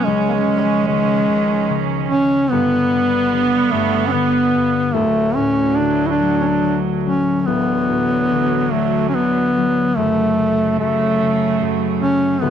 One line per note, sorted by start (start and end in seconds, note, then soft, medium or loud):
0.00 0.10 B1 medium
0.00 0.10 B2 medium
0.00 0.10 F#3 medium
0.00 2.46 C#4 medium
0.04 2.56 C#2 medium
0.04 0.46 C#3 medium
0.04 2.48 D#3 medium
0.04 2.48 F3 medium
0.04 0.30 G#3 medium
0.29 0.59 G#3 medium
0.29 0.33 A#3 medium
0.47 0.88 C#3 soft
0.57 0.61 G3 medium
0.57 0.87 G#3 medium
0.87 1.28 C#3 medium
0.87 1.80 G#3 loud
1.29 1.69 C#3 medium
1.70 2.10 C#3 medium
2.09 2.56 C#3 medium
2.09 2.52 C#4 loud
2.51 5.00 G1 medium
2.51 4.93 G2 medium
2.51 3.72 G2 medium
2.51 4.93 D3 medium
2.51 3.73 B3 loud
2.51 4.93 B3 loud
2.91 4.12 D3 medium
3.33 4.18 G3 medium
3.71 4.54 G2 medium
3.71 4.08 A3 medium
4.07 4.13 C#4 medium
4.12 5.00 D3 medium
4.12 4.96 B3 medium
4.55 5.00 G2 medium
4.94 7.46 D1 medium
4.94 7.46 D2 medium
4.94 7.45 D2 medium
4.94 7.45 A2 medium
4.94 7.45 F#3 medium
4.94 5.37 A3 medium
5.36 5.83 A2 soft
5.36 5.78 C#4 loud
5.76 6.62 D3 soft
5.76 6.08 D4 medium
6.06 6.43 D4 medium
6.06 6.10 E4 medium
6.21 6.67 F#3 soft
6.42 6.45 C#4 medium
6.42 6.77 D4 medium
6.63 7.53 D3 soft
7.04 7.53 F#3 soft
7.04 7.42 C#4 medium
7.42 7.48 C#4 medium
7.46 10.05 D1 medium
7.46 10.05 D2 medium
7.46 9.98 D3 medium
7.46 9.98 E3 medium
7.46 9.98 F#3 medium
7.46 8.74 B3 medium
7.88 8.37 A2 soft
8.32 9.13 D3 soft
8.71 9.22 F#3 soft
8.71 9.08 A3 medium
9.09 9.16 C#4 medium
9.14 10.05 D3 medium
9.14 9.98 B3 medium
9.57 10.05 F#3 medium
9.97 12.48 F#1 medium
9.97 10.80 F#2 medium
9.97 12.40 F#2 medium
9.97 12.40 C#3 medium
9.97 10.79 A3 medium
9.97 12.40 A3 medium
10.38 11.21 C#3 soft
10.80 11.60 F#2 medium
10.80 11.72 A3 medium
11.22 12.01 C#3 medium
11.61 12.48 F#2 medium
12.00 12.48 C#3 medium
12.00 12.43 C#4 medium
12.40 12.50 D1 medium
12.40 12.50 D2 medium
12.40 12.50 D3 medium
12.40 12.50 E3 medium
12.40 12.50 F#3 medium
12.40 12.50 B3 medium